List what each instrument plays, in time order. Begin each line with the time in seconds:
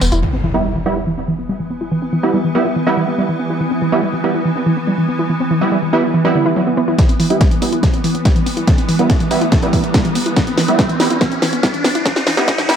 0.01 sub bass E1, synth arpeggio sound B3, open hi-hat, tambourine
0.12 sub bass E1, synth arpeggio sound E4, closed hi-hat, tambourine
0.22 synth drone E3 B3, synth arpeggio sound E3, closed hi-hat, impact
0.33 synth arpeggio sound C4
0.44 synth arpeggio sound E3, closed hi-hat
0.54 synth stab G3 B3 E4, synth arpeggio sound B3
0.65 synth arpeggio sound G3
0.75 synth arpeggio sound E3, closed hi-hat
0.86 synth stab G3 B3 E4, synth arpeggio sound B3
0.96 synth arpeggio sound E4, closed hi-hat
1.07 synth arpeggio sound E3, closed hi-hat
1.18 synth arpeggio sound C4, closed hi-hat
1.28 synth arpeggio sound E3, closed hi-hat
1.39 synth arpeggio sound B3, closed hi-hat
1.49 synth arpeggio sound G3, closed hi-hat
1.60 synth arpeggio sound E3, closed hi-hat
1.70 synth arpeggio sound B3, closed hi-hat
1.81 synth arpeggio sound E4, closed hi-hat
1.91 synth arpeggio sound E3, closed hi-hat
2.02 synth arpeggio sound C4, closed hi-hat
2.13 synth arpeggio sound E3, closed hi-hat
2.23 synth stab G3 B3 E4, synth arpeggio sound B3
2.34 synth arpeggio sound G3, closed hi-hat
2.44 synth arpeggio sound E3, closed hi-hat
2.55 synth stab G3 B3 E4, synth arpeggio sound B3
2.66 synth arpeggio sound E4
2.76 synth arpeggio sound E3, closed hi-hat
2.87 synth stab G3 B3 E4, synth arpeggio sound C4
2.97 synth arpeggio sound E3
3.08 synth arpeggio sound B3
3.18 synth arpeggio sound G3, closed hi-hat
3.29 synth arpeggio sound E3, closed hi-hat
3.39 synth arpeggio sound B3
3.50 synth arpeggio sound E4
3.60 synth arpeggio sound E3, closed hi-hat
3.71 synth arpeggio sound C4, closed hi-hat
3.82 synth arpeggio sound E3, closed hi-hat
3.92 synth stab G3 B3 E4, synth arpeggio sound B3
4.03 synth arpeggio sound G3, closed hi-hat
4.13 synth arpeggio sound E3, closed hi-hat
4.24 synth stab G3 B3 E4, synth arpeggio sound B3
4.35 synth arpeggio sound E4
4.45 synth arpeggio sound E3, closed hi-hat
4.56 synth arpeggio sound C4, closed hi-hat
4.66 synth arpeggio sound E3, closed hi-hat
4.77 synth arpeggio sound B3, closed hi-hat
4.87 synth arpeggio sound G3, closed hi-hat
4.98 synth arpeggio sound E3, closed hi-hat
5.08 synth arpeggio sound B3, closed hi-hat
5.19 synth arpeggio sound E4, closed hi-hat
5.30 synth arpeggio sound E3, closed hi-hat
5.40 synth arpeggio sound C4, closed hi-hat
5.51 synth arpeggio sound E3, closed hi-hat
5.61 synth stab G3 B3 E4, synth arpeggio sound B3, closed hi-hat
5.72 synth arpeggio sound G3, closed hi-hat
5.82 synth arpeggio sound E3, closed hi-hat
5.93 synth stab G3 B3 E4, synth arpeggio sound B3, closed hi-hat
6.03 synth arpeggio sound E4, closed hi-hat
6.14 synth arpeggio sound E3, closed hi-hat
6.25 synth stab G3 B3 E4, synth arpeggio sound C4
6.35 synth arpeggio sound D3, closed hi-hat
6.46 synth arpeggio sound E4, closed hi-hat
6.56 synth arpeggio sound F#3, closed hi-hat
6.67 synth arpeggio sound B3, closed hi-hat
6.77 synth arpeggio sound B3, closed hi-hat
6.88 synth arpeggio sound E4, closed hi-hat
6.98 synth arpeggio sound E3, synth drone E3 B3, kick, snare, closed hi-hat, riser
7.09 synth arpeggio sound C4, closed hi-hat
7.19 synth arpeggio sound E3, open hi-hat
7.30 synth stab G3 B3 E4, synth arpeggio sound B3, closed hi-hat
7.41 synth arpeggio sound G3, kick, snare, closed hi-hat
7.51 synth arpeggio sound E3, closed hi-hat
7.62 synth stab G3 B3 E4, synth arpeggio sound B3, open hi-hat
7.72 synth arpeggio sound E4, closed hi-hat
7.83 synth arpeggio sound E3, kick, snare, closed hi-hat
7.94 synth arpeggio sound C4, closed hi-hat
8.04 synth arpeggio sound E3, open hi-hat
8.15 synth arpeggio sound B3, closed hi-hat
8.25 synth arpeggio sound G3, kick, snare, closed hi-hat
8.36 synth arpeggio sound E3, closed hi-hat
8.46 synth arpeggio sound B3, open hi-hat
8.57 synth arpeggio sound E4, closed hi-hat
8.67 synth arpeggio sound E3, kick, snare, closed hi-hat
8.78 synth arpeggio sound C4, closed hi-hat
8.89 synth arpeggio sound E3, open hi-hat
8.99 synth stab G3 B3 E4, synth arpeggio sound B3, closed hi-hat
9.10 synth arpeggio sound G3, kick, snare, closed hi-hat
9.20 synth arpeggio sound E3, closed hi-hat
9.31 synth stab G3 B3 E4, synth arpeggio sound B3, open hi-hat
9.41 synth arpeggio sound E4, closed hi-hat
9.52 synth arpeggio sound E3, kick, snare, closed hi-hat
9.62 synth stab G3 B3 E4, synth arpeggio sound C4, closed hi-hat
9.73 synth arpeggio sound E3, kick, open hi-hat
9.84 synth arpeggio sound B3, closed hi-hat
9.94 synth arpeggio sound G3, kick, snare, closed hi-hat
10.05 synth arpeggio sound E3, closed hi-hat
10.15 synth arpeggio sound B3, open hi-hat
10.26 synth arpeggio sound E4, closed hi-hat
10.36 synth arpeggio sound E3, kick, snare, closed hi-hat
10.47 synth arpeggio sound C4, closed hi-hat
10.58 synth arpeggio sound E3, snare, open hi-hat
10.68 synth stab G3 B3 E4, synth arpeggio sound B3, closed hi-hat
10.79 synth arpeggio sound G3, kick, snare, closed hi-hat
10.89 synth arpeggio sound E3, closed hi-hat
11.00 synth stab G3 B3 E4, synth arpeggio sound B3, snare, open hi-hat
11.10 synth arpeggio sound E4, closed hi-hat
11.21 synth arpeggio sound E3, kick, snare, closed hi-hat
11.32 synth arpeggio sound C4, closed hi-hat
11.42 synth arpeggio sound E3, snare, open hi-hat
11.53 synth arpeggio sound B3, closed hi-hat
11.63 synth arpeggio sound G3, kick, snare, closed hi-hat
11.74 synth arpeggio sound E3, closed hi-hat
11.84 synth arpeggio sound B3, snare, open hi-hat
11.95 synth arpeggio sound E4, closed hi-hat
12.06 synth arpeggio sound E3, kick, snare, closed hi-hat
12.16 synth arpeggio sound C4, snare, closed hi-hat
12.27 synth arpeggio sound E3, snare, open hi-hat
12.37 synth stab G3 B3 E4, synth arpeggio sound B3, snare, closed hi-hat
12.48 synth arpeggio sound G3, kick, snare, closed hi-hat
12.58 synth arpeggio sound E3, snare, closed hi-hat
12.69 synth stab G3 B3 E4, synth arpeggio sound B3, snare, open hi-hat